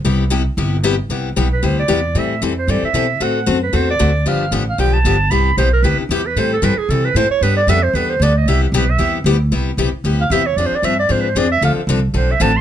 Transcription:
X:1
M:4/4
L:1/8
Q:"Swing" 1/4=228
K:C
V:1 name="Clarinet"
z8 | z3 B c d3 | e2 z c d e3 | ^f2 z B c d3 |
f2 z f g a3 | b2 c _B =B D G B | c A B _A =A B c _d | B d e c B c d _e |
e G B e2 z3 | z4 z f e _d | (3d c d e d (3c B c d e | f z3 c e a c' |]
V:2 name="Steel-string acoustic guitar"
[C,G,B,EG] z [C,G,B,EG] z [C,G,B,EG] z [C,G,B,EG] z | [C,G,B,EG] z [C,G,B,EG] z [C,G,B,EG] z [C,G,B,EG] z | [E,G,CEA] z [E,G,CEA] z [E,G,CEA] z [E,G,CEA] z | [D,A,C^FA] z [D,A,CFA] z [D,A,CFA] z [D,A,CFA] z |
[D,F,B,DG] z [D,F,B,DG] z [D,F,B,DG] z [D,F,B,DG] z | [C,G,B,EG] z [C,G,B,EG] z [C,G,B,EG] z [C,G,B,EG] z | [E,G,CEA] z [E,G,CEA] z [E,G,CEA] z [E,G,CEA] z | [G,B,DA] z [G,B,DA] z [G,B,DA] z [G,B,DA] z |
[C,G,B,EG] z [C,G,B,EG] z [C,G,B,EG] z [C,G,B,EG] z | [C,G,B,EG] z [C,G,B,EG] z [C,G,B,EG] z [C,G,B,EG] z | [F,CD_A] z [F,CDA] z [F,CDA] z [F,CDA] z | [D,F,CDA] z [D,F,CDA] z [D,F,CDA] z [D,F,CDA] z |]
V:3 name="Upright bass" clef=bass
C,,4 G,,,4 | C,,2 B,,,2 D,,2 E,,2 | A,,2 F,,2 G,, z B,,2 | A,,2 ^F,,2 E,,2 D,,2 |
G,,,2 A,,,2 B,,,2 G,,,2 | C,,2 B,,,2 D,, z E,,2 | A,,2 G,, z C,2 A,, z | G,,2 F,,2 E,,2 D,,2 |
C,,2 B,,,2 E,,2 D,,2 | C,,2 B,,, z D,,2 E,,2 | F,, z G,,2 _A,,2 F,,2 | D,, z C,,2 B,,,2 A,,,2 |]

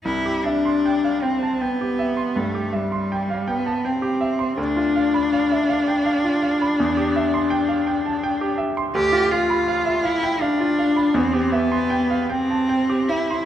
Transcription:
X:1
M:12/8
L:1/16
Q:3/8=54
K:C
V:1 name="Grand piano"
C,, G e c' g f g a g G e c' G,, G e c' g f g a g G e c' | D,, F f b f e f g f F f b E,, G e c' g f g a g G e c' | D,, F f b f e f g f F f b E,, G e c' g f g a g G e c' |]
V:2 name="Cello"
E2 D4 C2 B,4 A,2 G,4 B,2 C4 | D16- D6 z2 | G2 F4 E2 D4 C2 B,4 C4 E2 |]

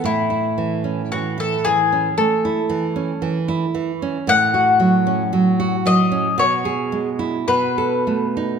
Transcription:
X:1
M:4/4
L:1/16
Q:1/4=57
K:Alyd
V:1 name="Mandolin"
E4 F A G2 A6 z2 | f6 d2 c4 B4 |]
V:2 name="Nylon-string guitar"
A,, E E, C E, E E, C A, E E, C E, E E, C | A,, F F, C F, F F, C B,, G G, E B,, A A, D |]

